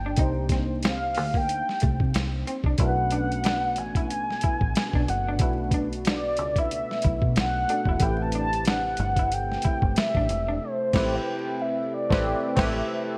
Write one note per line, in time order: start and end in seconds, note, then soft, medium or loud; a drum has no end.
0.00 0.14 G1 medium
0.00 0.13 A#3 medium
0.00 0.14 D4 medium
0.00 0.14 D#4 medium
0.00 0.15 G4 medium
0.00 0.15 C5 medium
0.00 0.51 G5 medium
0.06 0.15 D4 medium
0.16 1.17 C2 loud
0.16 2.74 A#3 medium
0.16 2.75 D4 medium
0.16 2.75 D#4 medium
0.16 0.32 D#4 medium
0.16 2.76 G4 medium
0.16 kick loud
0.16 closed hi-hat medium
0.21 2.76 C5 medium
0.49 0.65 C4 medium
0.49 kick loud
0.49 snare soft
0.49 closed hi-hat medium
0.83 0.98 C4 medium
0.83 1.39 F5 loud
0.83 snare loud
0.83 closed hi-hat medium
1.15 1.62 D2 loud
1.15 muted clean electric guitar stroke soft
1.15 open hi-hat soft
1.34 1.45 A#3 medium
1.34 2.01 G5 loud
1.34 kick medium
1.49 closed hi-hat medium
1.69 snare soft
1.80 1.99 C2 medium
1.80 1.95 A3 medium
1.80 kick loud
1.80 closed hi-hat medium
2.00 2.12 C3 medium
2.00 kick medium
2.14 2.43 C2 loud
2.14 muted clean electric guitar stroke soft
2.14 snare loud
2.14 closed hi-hat medium
2.47 2.61 C4 medium
2.47 closed hi-hat medium
2.64 2.77 C2 loud
2.64 2.76 D4 medium
2.64 kick medium
2.78 3.78 B1 loud
2.78 7.96 B2 medium
2.78 5.35 A3 medium
2.78 13.18 A3 medium
2.78 7.97 B3 medium
2.78 5.36 C#4 medium
2.78 5.36 D4 medium
2.78 2.93 E4 medium
2.78 7.97 F#4 medium
2.78 5.37 F#4 medium
2.78 3.81 F#5 loud
2.78 kick loud
2.78 closed hi-hat medium
2.82 2.88 A#4 medium
2.88 5.40 B4 medium
3.11 3.26 D4 medium
3.11 closed hi-hat medium
3.32 closed hi-hat soft
3.44 3.59 D4 medium
3.44 snare loud
3.44 closed hi-hat medium
3.76 4.34 A1 medium
3.76 5.11 G#5 loud
3.76 muted clean electric guitar stroke soft
3.76 closed hi-hat medium
3.95 4.06 E4 medium
3.95 kick medium
3.95 closed hi-hat soft
4.10 closed hi-hat medium
4.30 snare soft
4.41 4.57 E4 medium
4.41 muted fingered electric bass stroke soft
4.41 kick medium
4.41 closed hi-hat medium
4.61 4.73 A1 medium
4.61 kick medium
4.75 snare loud
4.75 closed hi-hat medium
4.93 5.06 B1 medium
4.93 5.05 D4 medium
4.93 kick medium
5.08 5.40 F#1 medium
5.08 5.74 F#5 loud
5.08 muted clean electric guitar stroke soft
5.08 closed hi-hat medium
5.28 5.37 D4 medium
5.39 6.39 B1 loud
5.39 7.64 A3 medium
5.39 7.64 B3 medium
5.39 7.65 D4 medium
5.39 5.55 E4 medium
5.39 7.65 F#4 medium
5.39 kick loud
5.39 closed hi-hat medium
5.43 7.66 B4 medium
5.71 5.87 D4 medium
5.71 kick loud
5.71 closed hi-hat medium
5.93 closed hi-hat soft
6.05 6.20 D4 medium
6.05 6.61 D5 medium
6.05 snare loud
6.05 closed hi-hat medium
6.37 6.83 C#2 loud
6.37 muted clean electric guitar stroke soft
6.37 closed hi-hat medium
6.56 6.68 E4 medium
6.56 7.23 E5 loud
6.56 kick medium
6.56 closed hi-hat soft
6.71 closed hi-hat medium
6.91 snare soft
7.02 7.21 B1 medium
7.02 7.18 E4 medium
7.02 kick medium
7.02 closed hi-hat medium
7.22 7.38 B2 loud
7.22 kick medium
7.36 7.64 B1 medium
7.36 8.05 F#5 loud
7.36 muted clean electric guitar stroke soft
7.36 snare loud
7.36 closed hi-hat medium
7.67 7.98 A3 medium
7.67 8.00 C#4 soft
7.67 8.01 D4 soft
7.67 7.83 D4 medium
7.67 8.01 F#4 soft
7.67 8.01 A4 medium
7.67 closed hi-hat medium
7.85 7.98 E1 loud
7.85 7.98 E4 medium
7.85 kick medium
7.99 8.95 A1 loud
7.99 13.18 C3 medium
7.99 10.57 A3 medium
7.99 13.18 C4 medium
7.99 10.57 C4 medium
7.99 10.58 E4 medium
7.99 8.16 E4 medium
7.99 10.59 G4 medium
7.99 10.58 G4 medium
7.99 10.59 B4 medium
7.99 kick loud
7.99 closed hi-hat loud
8.04 8.24 G5 loud
8.22 8.34 A5 loud
8.32 8.48 D4 medium
8.32 8.69 A5 loud
8.32 closed hi-hat medium
8.53 closed hi-hat soft
8.65 8.81 D4 medium
8.65 9.35 F#5 loud
8.65 snare loud
8.65 closed hi-hat medium
8.97 9.56 G1 loud
8.97 muted clean electric guitar stroke soft
8.97 closed hi-hat medium
9.16 9.28 E4 medium
9.16 kick medium
9.16 closed hi-hat soft
9.32 9.97 G5 loud
9.32 closed hi-hat medium
9.52 snare soft
9.62 9.78 E4 medium
9.62 kick loud
9.62 closed hi-hat medium
9.66 muted fingered electric bass stroke medium
9.82 9.94 G1 medium
9.82 kick medium
9.96 10.65 E5 loud
9.96 snare loud
9.96 closed hi-hat medium
10.15 10.27 A1 medium
10.15 10.26 D4 medium
10.15 kick medium
10.29 10.58 E1 loud
10.29 muted clean electric guitar stroke soft
10.29 closed hi-hat medium
10.49 10.58 D4 medium
10.62 13.18 A4 medium
10.62 11.17 C5 loud
10.93 11.17 A1 loud
10.93 11.17 A3 loud
10.93 11.17 C4 loud
10.93 11.18 E4 loud
10.93 11.18 G4 loud
10.93 11.19 B4 loud
10.93 kick loud
10.93 snare loud
10.93 crash medium
11.15 11.63 G5 loud
11.62 11.93 E5 medium
11.94 12.61 D5 medium
12.10 12.32 A1 loud
12.10 12.32 A3 loud
12.10 12.32 C4 loud
12.10 12.33 E4 medium
12.10 12.33 G4 loud
12.10 12.34 B4 loud
12.10 kick loud
12.10 snare loud
12.56 12.81 A1 loud
12.56 12.79 A3 loud
12.56 12.80 C4 loud
12.56 12.80 E4 loud
12.56 12.81 G4 loud
12.56 12.82 B4 loud
12.56 kick loud
12.56 snare loud
12.56 crash medium
12.60 13.10 E5 medium